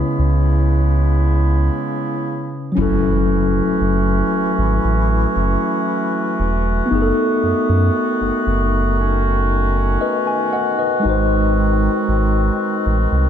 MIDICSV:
0, 0, Header, 1, 5, 480
1, 0, Start_track
1, 0, Tempo, 1034483
1, 1284, Time_signature, 4, 2, 24, 8
1, 6168, End_track
2, 0, Start_track
2, 0, Title_t, "Tine electric piano"
2, 0, Program_c, 0, 4
2, 0, Control_c, 0, 64, 127
2, 0, Note_on_c, 0, 49, 70
2, 0, Note_on_c, 0, 61, 67
2, 0, Note_on_c, 0, 64, 68
2, 0, Note_on_c, 0, 71, 80
2, 1254, Note_off_c, 0, 49, 0
2, 1261, Note_off_c, 0, 61, 0
2, 1262, Note_on_c, 0, 54, 75
2, 1269, Note_off_c, 0, 64, 0
2, 1277, Note_off_c, 0, 71, 0
2, 1277, Note_on_c, 0, 61, 68
2, 1291, Control_c, 0, 64, 0
2, 1292, Note_on_c, 0, 64, 71
2, 1307, Note_on_c, 0, 69, 88
2, 1375, Control_c, 0, 64, 127
2, 3174, Note_off_c, 0, 54, 0
2, 3182, Note_off_c, 0, 61, 0
2, 3182, Note_on_c, 0, 59, 76
2, 3190, Note_off_c, 0, 64, 0
2, 3197, Note_off_c, 0, 69, 0
2, 3205, Note_on_c, 0, 63, 69
2, 3210, Control_c, 0, 64, 0
2, 3226, Note_on_c, 0, 68, 64
2, 3245, Note_off_c, 0, 68, 0
2, 3257, Note_on_c, 0, 69, 87
2, 3293, Control_c, 0, 64, 127
2, 4614, Note_off_c, 0, 59, 0
2, 4626, Note_off_c, 0, 63, 0
2, 4645, Note_on_c, 0, 75, 68
2, 4648, Note_on_c, 0, 71, 60
2, 4652, Note_off_c, 0, 69, 0
2, 4759, Note_off_c, 0, 75, 0
2, 4760, Note_off_c, 0, 71, 0
2, 4766, Note_on_c, 0, 80, 74
2, 4879, Note_off_c, 0, 80, 0
2, 4885, Note_on_c, 0, 78, 73
2, 4888, Note_on_c, 0, 75, 61
2, 4998, Note_off_c, 0, 78, 0
2, 4999, Note_off_c, 0, 75, 0
2, 5004, Note_on_c, 0, 75, 66
2, 5008, Note_on_c, 0, 71, 57
2, 5102, Note_on_c, 0, 56, 75
2, 5117, Note_on_c, 0, 63, 72
2, 5130, Control_c, 0, 64, 0
2, 5132, Note_on_c, 0, 66, 71
2, 5147, Note_on_c, 0, 72, 83
2, 5203, Control_c, 0, 64, 127
2, 5232, Note_off_c, 0, 75, 0
2, 5235, Note_off_c, 0, 71, 0
2, 6168, Note_off_c, 0, 56, 0
2, 6168, Note_off_c, 0, 63, 0
2, 6168, Note_off_c, 0, 66, 0
2, 6168, Note_off_c, 0, 72, 0
2, 6168, End_track
3, 0, Start_track
3, 0, Title_t, "Woodwind section"
3, 0, Program_c, 1, 71
3, 0, Note_on_c, 1, 49, 70
3, 0, Note_on_c, 1, 56, 66
3, 0, Note_on_c, 1, 59, 66
3, 0, Note_on_c, 1, 64, 76
3, 1206, Note_off_c, 1, 49, 0
3, 1206, Note_off_c, 1, 56, 0
3, 1206, Note_off_c, 1, 59, 0
3, 1206, Note_off_c, 1, 64, 0
3, 1285, Note_on_c, 1, 57, 70
3, 1285, Note_on_c, 1, 61, 70
3, 1285, Note_on_c, 1, 66, 84
3, 1286, Note_on_c, 1, 52, 75
3, 3186, Note_off_c, 1, 52, 0
3, 3186, Note_off_c, 1, 61, 0
3, 3203, Note_on_c, 1, 51, 75
3, 3204, Note_on_c, 1, 59, 73
3, 4154, Note_off_c, 1, 59, 0
3, 4165, Note_on_c, 1, 61, 73
3, 5045, Note_off_c, 1, 57, 0
3, 5045, Note_off_c, 1, 61, 0
3, 5124, Note_on_c, 1, 56, 73
3, 5124, Note_on_c, 1, 60, 69
3, 6168, Note_off_c, 1, 51, 0
3, 6168, Note_off_c, 1, 56, 0
3, 6168, Note_off_c, 1, 60, 0
3, 6168, Note_off_c, 1, 66, 0
3, 6168, End_track
4, 0, Start_track
4, 0, Title_t, "Sub bass"
4, 0, Program_c, 2, 38
4, 86, Note_on_c, 2, 37, 84
4, 787, Note_off_c, 2, 37, 0
4, 1286, Note_on_c, 2, 30, 102
4, 1674, Note_off_c, 2, 30, 0
4, 1765, Note_on_c, 2, 30, 94
4, 1959, Note_off_c, 2, 30, 0
4, 2125, Note_on_c, 2, 32, 96
4, 2222, Note_off_c, 2, 32, 0
4, 2246, Note_on_c, 2, 33, 89
4, 2439, Note_off_c, 2, 33, 0
4, 2486, Note_on_c, 2, 30, 94
4, 2582, Note_off_c, 2, 30, 0
4, 2966, Note_on_c, 2, 28, 93
4, 3160, Note_off_c, 2, 28, 0
4, 3206, Note_on_c, 2, 30, 106
4, 3302, Note_off_c, 2, 30, 0
4, 3447, Note_on_c, 2, 42, 48
4, 3494, Note_off_c, 2, 42, 0
4, 3568, Note_on_c, 2, 42, 102
4, 3664, Note_off_c, 2, 42, 0
4, 3808, Note_on_c, 2, 30, 48
4, 3855, Note_off_c, 2, 30, 0
4, 3927, Note_on_c, 2, 30, 92
4, 4627, Note_off_c, 2, 30, 0
4, 5125, Note_on_c, 2, 32, 105
4, 5514, Note_off_c, 2, 32, 0
4, 5605, Note_on_c, 2, 32, 97
4, 5799, Note_off_c, 2, 32, 0
4, 5966, Note_on_c, 2, 33, 95
4, 6062, Note_off_c, 2, 33, 0
4, 6085, Note_on_c, 2, 36, 94
4, 6168, Note_off_c, 2, 36, 0
4, 6168, End_track
5, 0, Start_track
5, 0, Title_t, "Impact"
5, 0, Program_c, 3, 103
5, 1284, Note_on_c, 3, 60, 83
5, 3204, Note_off_c, 3, 60, 0
5, 6168, End_track
0, 0, End_of_file